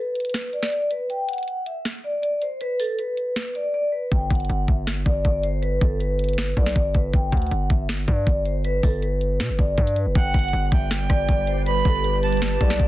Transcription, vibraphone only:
0.00 0.50 B4 medium
0.53 0.70 D5 medium
0.72 0.89 D5 medium
0.91 1.08 B4 medium
1.10 1.27 G5 medium
1.29 1.64 F#5 medium
1.66 1.83 E5 medium
2.04 2.21 D5 medium
2.23 2.40 D5 medium
2.42 2.59 C5 medium
2.61 2.78 B4 loud
2.80 2.97 A4 medium
2.99 3.52 B4 medium
3.55 3.72 D5 medium
3.74 3.91 D5 medium
3.92 4.10 B4 medium
4.12 4.29 G5 medium
4.30 4.66 F#5 medium
4.69 4.86 E5 medium
5.05 5.23 D5 medium
5.25 5.42 D5 medium
5.44 5.61 C5 medium
5.62 5.80 B4 loud
5.82 5.99 A4 medium
6.00 6.53 B4 medium
6.57 6.74 D5 medium
6.75 6.93 D5 loud
6.95 7.12 B4 medium
7.14 7.31 G5 medium
7.32 7.68 F#5 medium
7.70 7.87 E5 medium
8.08 8.25 D5 medium
8.46 8.63 C5 medium
8.65 8.82 B4 loud
8.84 9.01 A4 medium
9.03 9.56 B4 medium
9.59 9.76 D5 medium
9.78 9.95 D5 medium
9.96 10.13 B4 medium
10.15 10.33 G5 medium
10.73 10.89 E5 medium
11.09 11.27 D5 medium
11.29 11.46 D5 medium
11.48 11.65 C5 medium
11.66 11.83 B4 loud
11.86 12.03 A4 medium
12.04 12.57 B4 medium
12.61 12.78 D5 medium
12.79 12.88 D5 loud

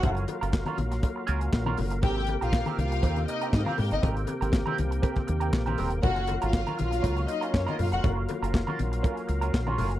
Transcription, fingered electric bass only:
0.04 0.25 F#1 loud
0.42 0.63 F#1 medium
0.78 0.99 A#1 medium
1.29 1.49 C#2 medium
1.53 1.74 A#1 loud
1.78 2.03 F#1 medium
2.03 2.35 G#1 medium
2.42 2.63 A#1 medium
2.78 2.99 C2 medium
3.03 3.24 D#2 loud
3.54 3.65 G#2 loud
3.79 3.90 G#2 medium
3.91 4.01 G1 medium
4.03 4.24 G#1 loud
4.42 4.63 G#1 loud
4.79 5.00 C2 medium
5.29 5.50 D#2 loud
5.54 5.75 A#1 medium
5.79 6.00 D#1 loud
6.04 6.36 F#1 medium
6.43 6.64 G#1 medium
6.80 7.01 A#1 medium
7.04 7.25 C#2 medium
7.55 7.65 F#2 medium
7.79 7.90 F#2 medium
7.93 8.02 F1 medium
8.04 8.25 F#1 medium
8.42 8.63 F#1 medium
8.80 9.01 A#1 medium
9.29 9.50 C#2 medium
9.54 9.75 A#1 loud
9.79 9.99 F#1 medium

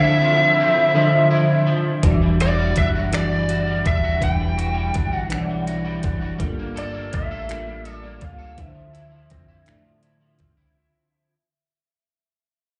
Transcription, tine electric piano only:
0.00 0.53 D3 medium
0.00 0.54 F3 medium
0.00 0.53 D4 medium
0.00 0.54 C5 medium
0.00 0.58 E5 medium
0.94 1.62 D3 medium
0.94 1.63 F3 medium
0.94 1.63 D4 medium
0.94 1.64 C5 medium
0.98 1.03 D#5 medium
1.05 1.68 E5 loud
2.03 2.71 E3 medium
2.03 2.73 G3 medium
2.03 2.72 D4 medium
2.03 2.72 F#4 medium
2.08 2.12 D5 medium
2.14 2.77 E5 medium
3.11 3.80 E3 medium
3.11 3.81 D4 medium
3.11 3.81 F#4 medium
3.15 3.82 G3 medium
3.15 3.83 D5 medium
4.20 4.89 E3 medium
4.20 4.91 G3 medium
4.20 4.90 D4 medium
4.20 4.90 E4 medium
4.26 4.92 E5 medium
5.29 5.98 E3 medium
5.29 6.00 G3 medium
5.29 5.99 D4 medium
5.29 5.99 E4 medium
5.34 5.39 C#5 medium
5.41 6.04 D5 medium
6.38 7.07 G3 medium
6.38 7.08 D4 medium
6.38 7.08 F4 medium
6.38 7.09 A4 medium
6.43 7.10 A#3 medium
7.48 8.17 G3 medium
7.48 8.17 D4 medium
7.48 8.17 F4 medium
7.48 8.18 A4 medium
7.52 8.19 A#3 medium
8.56 9.25 D3 medium
8.56 9.27 F3 medium
8.56 9.26 D4 medium
8.56 9.27 E4 medium
8.61 8.66 B4 medium
8.68 9.31 C5 medium
9.65 10.34 D3 medium
9.65 10.36 F3 medium
9.65 10.35 D4 medium
9.65 10.36 E4 medium
9.71 10.37 D5 medium

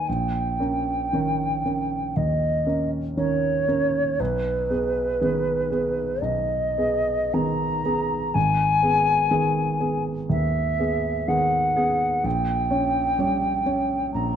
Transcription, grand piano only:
0.09 0.58 A#1 soft
0.60 1.08 C#4 soft
0.60 1.08 A#4 soft
1.13 1.61 D#3 soft
1.13 1.61 C#4 soft
1.13 1.61 A#4 soft
1.65 2.12 C#4 soft
1.65 2.12 A#4 soft
2.17 2.65 D#2 soft
2.66 3.13 C#4 soft
2.66 3.14 A#4 soft
3.17 3.65 D#3 soft
3.17 3.65 C#4 soft
3.17 3.65 A#4 soft
3.68 4.15 C#4 soft
3.68 4.15 A#4 soft
4.20 4.69 B1 soft
4.70 5.17 B3 soft
4.70 5.17 G#4 soft
5.21 5.68 D#3 soft
5.21 5.68 B3 soft
5.21 5.68 G#4 soft
5.71 6.19 B3 soft
5.71 6.19 G#4 soft
6.22 6.76 B1 soft
6.78 7.31 B3 soft
6.78 7.31 G#4 soft
7.34 7.82 D#3 soft
7.34 7.82 B3 soft
7.34 7.82 G#4 soft
7.85 8.31 B3 soft
7.85 8.31 G#4 soft
8.35 8.82 G#1 soft
8.83 9.28 B3 soft
8.83 9.28 G#4 soft
9.31 9.77 D#3 soft
9.31 9.77 B3 soft
9.31 9.77 G#4 soft
9.80 10.26 B3 soft
9.80 10.26 G#4 soft
10.29 10.78 D#2 soft
10.79 11.25 B3 soft
10.79 11.25 G#4 soft
11.28 11.73 D#3 soft
11.28 11.73 B3 soft
11.28 11.73 G#4 soft
11.76 12.20 B3 soft
11.76 12.21 G#4 soft
12.24 12.70 A#1 soft
12.70 13.14 C#4 soft
12.70 13.14 C#5 soft
13.19 13.62 G3 soft
13.19 13.63 C#4 soft
13.19 13.63 C#5 soft
13.66 14.10 C#4 soft
13.66 14.10 C#5 soft
14.14 14.36 A#1 soft

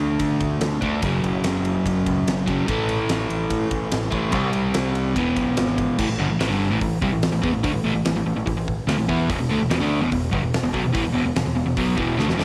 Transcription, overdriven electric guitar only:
0.00 0.80 D3 medium
0.00 0.83 A3 medium
0.00 0.80 D4 loud
0.81 1.03 D3 medium
0.81 1.05 A3 medium
0.81 1.01 D4 medium
1.02 2.46 F#2 medium
1.02 2.47 C#3 loud
1.02 2.45 F#3 loud
2.46 2.69 F#2 medium
2.46 2.66 C#3 medium
2.46 2.67 F#3 medium
2.67 4.11 A2 medium
2.67 4.12 E3 loud
2.67 4.09 A3 loud
4.11 4.30 A2 medium
4.11 4.32 E3 medium
4.11 4.32 A3 medium
4.31 5.14 C3 medium
4.31 5.15 G3 loud
4.35 5.16 C4 loud
5.14 5.97 E2 medium
5.14 5.98 B2 loud
5.14 5.98 E3 loud
5.99 6.08 A2 loud
5.99 6.08 E3 loud
6.09 6.19 A2 medium
6.09 6.20 E3 medium
6.18 6.29 G2 loud
6.18 6.29 D3 loud
6.30 6.38 A2 medium
6.30 6.39 E3 medium
6.39 6.50 A2 medium
6.39 6.50 E3 medium
6.49 6.70 G2 medium
6.49 6.70 D3 medium
6.49 6.71 G3 loud
6.70 6.80 A2 loud
6.70 6.80 E3 loud
6.81 6.98 A2 medium
6.81 6.98 E3 medium
7.01 7.12 C3 medium
7.01 7.12 G3 loud
7.12 7.29 A2 medium
7.12 7.29 E3 medium
7.32 7.41 A2 medium
7.32 7.40 E3 medium
7.42 7.52 E3 medium
7.42 7.53 B3 medium
7.53 7.63 A2 medium
7.53 7.63 E3 medium
7.63 7.72 D3 loud
7.63 7.73 A3 loud
7.73 7.83 A2 medium
7.73 7.84 E3 medium
7.84 7.94 A2 loud
7.84 7.94 E3 loud
7.95 8.04 A2 medium
7.95 8.05 E3 medium
8.05 8.15 A2 medium
8.05 8.15 E3 medium
8.16 8.25 A2 medium
8.16 8.25 E3 medium
8.26 8.35 A2 medium
8.26 8.36 E3 medium
8.36 8.45 A2 medium
8.36 8.45 E3 medium
8.46 8.56 A2 medium
8.46 8.56 E3 medium
8.57 8.74 A2 medium
8.57 8.74 E3 medium
8.87 8.98 D3 loud
8.87 8.98 A3 loud
8.98 9.08 A2 medium
8.98 9.07 E3 medium
9.08 9.29 E3 medium
9.08 9.29 B3 loud
9.08 9.29 E4 medium
9.30 9.38 E2 loud
9.30 9.39 B2 loud
9.39 9.50 E2 medium
9.39 9.49 B2 medium
9.49 9.60 D3 medium
9.49 9.60 A3 loud
9.59 9.69 E2 medium
9.59 9.69 B2 medium
9.70 9.80 E2 loud
9.70 9.80 B2 loud
9.80 10.01 D3 medium
9.80 10.01 A3 medium
9.80 10.01 D4 medium
10.01 10.11 E2 medium
10.01 10.11 B2 medium
10.12 10.29 E2 medium
10.12 10.29 B2 medium
10.31 10.42 G2 medium
10.31 10.43 D3 loud
10.43 10.60 E2 medium
10.43 10.60 B2 medium
10.63 10.74 E2 medium
10.63 10.72 B2 medium
10.73 10.83 B2 medium
10.73 10.84 F#3 loud
10.84 10.95 E2 medium
10.84 10.92 B2 medium
10.93 11.04 A2 loud
10.93 11.04 E3 loud
11.04 11.12 E2 medium
11.04 11.13 B2 medium
11.13 11.24 E2 loud
11.13 11.25 B2 loud
11.25 11.35 E2 medium
11.25 11.36 B2 medium
11.36 11.44 E2 medium
11.36 11.45 B2 medium
11.45 11.54 E2 medium
11.45 11.55 B2 medium
11.55 11.65 E2 medium
11.55 11.65 B2 medium
11.66 11.77 E2 medium
11.66 11.76 B2 medium
11.77 11.95 B2 medium
11.77 11.97 F#3 medium
11.77 11.98 B3 loud
11.96 12.17 E2 medium
11.96 12.17 B2 loud
11.96 12.18 E3 loud
12.17 12.27 D3 medium
12.17 12.28 A3 loud
12.27 12.37 E2 loud
12.27 12.38 B2 medium
12.37 12.45 G2 medium
12.37 12.45 D3 medium
12.37 12.45 G3 medium

